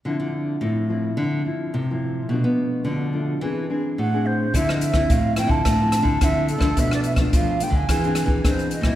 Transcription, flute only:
X:1
M:4/4
L:1/16
Q:1/4=107
K:Dm
V:1 name="Flute"
z16 | z12 ^f2 c2 | e _e =e2 f2 g a4- a e2 A2 | e d e2 f2 g ^g3 z2 c2 _e2 |]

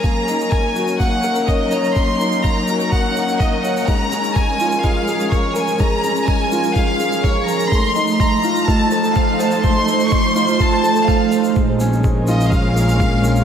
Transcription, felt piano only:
X:1
M:4/4
L:1/8
Q:1/4=125
K:Bbm
V:1 name="Felt piano"
B, E B, G B, B d d | B, E B, G B, B B, d | A, D A, F A, A B B | A, D A, F A, A A, B |
=A, E A, F A, =A z c | =A, E A, F A, =A A, c | A, D A, F A, A A, D |]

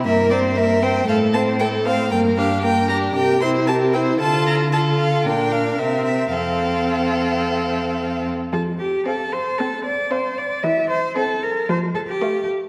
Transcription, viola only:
X:1
M:4/4
L:1/8
Q:1/4=114
K:F
V:1 name="Viola"
B, C B, C A, C A, C | B, D B, D G E G E | F2 F2 D2 C2 | C6- C z |
F,2 z2 C2 z2 | E,2 z2 F,2 z2 |]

